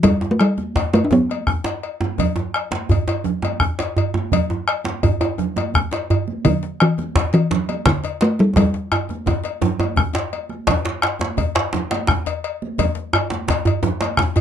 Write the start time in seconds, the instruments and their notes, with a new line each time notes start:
0.03 talking drum G3, bombo rim, bombo low, cowbell, djembe slap, djembe tone, djembe bass, low conga
0.21 djembe slap, djembe tone, high conga
0.31 talking drum A3
0.39 talking drum G3, bombo rim, cowbell, high conga
0.58 bombo rim, djembe slap, djembe tone, high conga
0.75 bombo low, cowbell, djembe slap, djembe bass
0.93 talking drum A3, bombo rim, cowbell, djembe slap, djembe tone
1.05 talking drum D4
1.11 talking drum B3, djembe tone, low conga
1.30 bombo rim, cowbell, high conga
1.47 bombo rim, bombo low, djembe bass
1.64 cowbell, djembe slap, djembe tone
1.83 cowbell, djembe slap
2.01 djembe slap, djembe tone, high conga
2.18 bombo low, cowbell, djembe tone, djembe bass, low conga
2.36 djembe slap, djembe tone, high conga
2.54 bombo rim, cowbell
2.71 bombo rim, djembe slap, djembe tone, high conga
2.89 bombo rim, bombo low, cowbell, djembe bass
3.08 cowbell, djembe slap, djembe tone
3.24 bombo rim, djembe slap, high conga, djembe tone, low conga
3.42 bombo rim, cowbell, djembe tone, high conga
3.60 bombo rim, bombo low, djembe bass
3.79 cowbell, djembe slap, djembe tone
3.97 cowbell, djembe bass
4.14 djembe slap, djembe tone, high conga
4.32 bombo low, cowbell, djembe tone, low conga, djembe bass
4.50 djembe slap, djembe tone, high conga
4.68 bombo rim, cowbell
4.84 bombo rim, djembe slap, high conga, djembe tone
5.03 bombo rim, bombo low, cowbell, djembe bass
5.21 cowbell, djembe slap, djembe tone
5.38 bombo rim, djembe slap, djembe tone, high conga, low conga
5.56 bombo rim, cowbell, high conga, djembe tone
5.74 bombo rim, bombo low, djembe bass
5.91 cowbell, djembe slap, djembe tone
6.10 cowbell, djembe bass
6.28 djembe slap, high conga
6.45 talking drum D3, bombo low, cowbell, djembe tone, djembe bass, low conga
6.63 djembe slap, high conga
6.80 talking drum E3, bombo rim, cowbell
6.98 bombo rim, djembe slap, djembe tone, high conga
7.15 bombo low, cowbell, djembe slap, djembe bass
7.33 talking drum E3, cowbell, djembe slap
7.51 bombo rim, djembe slap, djembe tone, high conga, low conga
7.69 bombo rim, cowbell, high conga
7.86 talking drum D3, bombo rim, bombo low, djembe slap, djembe bass
8.04 cowbell, djembe slap, djembe tone
8.21 talking drum A3, cowbell, djembe slap
8.39 talking drum G3, djembe slap, high conga
8.56 talking drum G3, bombo rim, bombo low, cowbell, djembe tone, high conga, djembe bass, low conga
8.74 djembe slap
8.92 bombo rim, cowbell, djembe tone
9.09 bombo rim, djembe tone, high conga
9.26 bombo rim, bombo low, cowbell, djembe slap, djembe tone, djembe bass
9.44 cowbell, djembe slap, high conga
9.61 djembe tone, low conga
9.79 cowbell, djembe slap, djembe tone, high conga
9.96 bombo rim, bombo low, high conga, djembe bass
10.13 bombo rim, cowbell, djembe slap, djembe tone
10.33 cowbell, high conga
10.49 bombo rim, djembe slap, high conga
10.67 bombo low, cowbell, djembe slap, djembe tone, low conga, djembe bass
10.85 djembe slap, high conga
11.02 bombo rim, cowbell, djembe slap
11.19 bombo rim, djembe slap, djembe tone, high conga
11.21 djembe slap
11.37 bombo rim, bombo low, cowbell, djembe bass
11.55 cowbell, djembe slap
11.73 bombo rim, djembe slap, djembe tone, high conga, low conga
11.91 bombo rim, cowbell, djembe slap, high conga
12.07 bombo rim, bombo low, djembe slap, djembe bass
12.26 cowbell, djembe slap, djembe tone
12.44 cowbell
12.62 high conga
12.78 bombo low, cowbell, djembe tone, djembe bass, low conga
12.95 djembe slap, high conga
13.13 bombo rim, cowbell, djembe tone
13.30 bombo rim, djembe slap, djembe tone, high conga
13.48 bombo rim, bombo low, cowbell, djembe slap, djembe bass
13.65 cowbell, djembe slap, djembe bass
13.83 bombo rim, djembe slap, djembe tone, high conga, low conga
14.01 bombo rim, cowbell, djembe slap, high conga
14.17 bombo rim, bombo low, djembe slap, djembe bass
14.36 cowbell, djembe slap, djembe tone, djembe bass